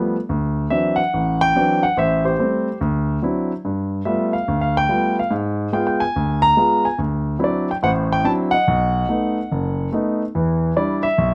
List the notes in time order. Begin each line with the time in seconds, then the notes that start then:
Already playing: F3 G3 A3 B3
0.29 D2
0.70 E3 F#3 C4 D4 E5
0.96 F#5
1.14 A1
1.41 G5
1.55 E3 F#3 C4 D4
1.83 F#5
1.97 A1 C5 E5
2.25 G4 C5
2.39 G3 A3 C4
2.81 D2
3.22 F#3 C4 D4 E4
3.65 G2
4.05 G3 A3 B3 F4 E5
4.33 F5
4.48 D2
4.61 F5
4.77 G5
4.89 G3 A3 B3 F4
5.19 F5
5.31 G#2
5.73 G#3 B3 F4 G5
5.87 G5
6.00 G#5
6.16 D2
6.42 A#5
6.57 G#3 B3 F4
6.85 G#5
6.98 D2
7.39 F#3 C4 D4 E4
7.44 D5
7.71 G5
7.83 A1 A2 C5 F#5
8.12 G5
8.24 F#3 C4 D4 E4 A5
8.51 D#5 F#5
8.68 B1
9.09 A3 B3 D#4
9.52 F#1
9.92 A3 B3 D#4
10.35 E2 E3
10.76 G3 D4 E4 D5
11.03 E5
11.18 B1